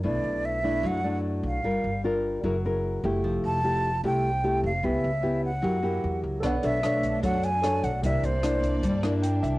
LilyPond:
<<
  \new Staff \with { instrumentName = "Flute" } { \time 4/4 \key b \dorian \tempo 4 = 150 d''4 e''4 fis''4 r8 f''8~ | f''4 r2. | r8 a''4. g''4. f''8 | e''4. fis''2 r8 |
r8 e''4. fis''8 gis''4 fis''8 | e''8 c''2 r4. | }
  \new Staff \with { instrumentName = "Grand piano" } { \time 4/4 \key b \dorian << { r1 | r1 | r1 | r1 |
r1 | r2. g''8 e''8 | } \\ { r1 | r1 | r1 | r1 |
<a' cis'' d'' fis''>2. <a' cis'' d'' a''>4 | <g' bes' d'' e''>1 | } >> }
  \new Staff \with { instrumentName = "Nylon-string guitar" } { \time 4/4 \key b \dorian << { <a d' e'>4. <a d' e'>4 <a d' e'>4. | <d' f' bes'>8 r8 <d' f' bes'>4 <e' gis' ais'>8 <e' gis' ais'>4 <a e' g'>8~ | <a e' g'>4 <a e' g'>8 r8 <a e' g'>8 r8 <a e' g'>8 r8 | <b e' g'>8 r8 <b e' g'>8 r8 <ais e' g'>8 <ais e' g'>4. |
<d' a' cis''>8 <d' a' cis''>8 <d' a' cis''>4 <d' a' cis''>8 r8 <d' a' cis''>8 r8 | <bes d' e'>8 r8 <bes d' e'>4 r8 <bes d' e'>4. | } \\ { b,2 fis2 | g2 fis2 | f2 c2 | cis2 fis2 |
b2 fis2 | c2 g2 | } >> }
  \new Staff \with { instrumentName = "String section" } { \time 4/4 \key b \dorian r1 | r1 | r1 | r1 |
<a d'>1 | <bes d' d''>1 | }
  \new Staff \with { instrumentName = "Upright bass" } { \clef bass \time 4/4 \key b \dorian b,,8 b,,4. fis,4. b,,8 | g,,8 g,,4. fis,,4. fis,,8 | f,,8 f,,4. c,4. f,,8 | cis,8 cis,4. fis,4 e,8 cis,8 |
b,,8 b,,4. fis,4. b,,8 | c,8 c,4. g,4. c,8 | }
  \new DrumStaff \with { instrumentName = "Drums" } \drummode { \time 4/4 r4 r4 r4 r4 | r4 r4 r4 r4 | r4 r4 r4 r4 | r4 r4 r4 r4 |
<hh bd ss>8 hh8 <hh ss>8 <hh bd>8 <hh bd>8 hh8 <hh ss>8 <hh bd>8 | <hh bd>8 hh8 <hh ss>8 <hh bd>8 <hh bd>8 <hh ss>8 hh8 <hh bd>8 | }
>>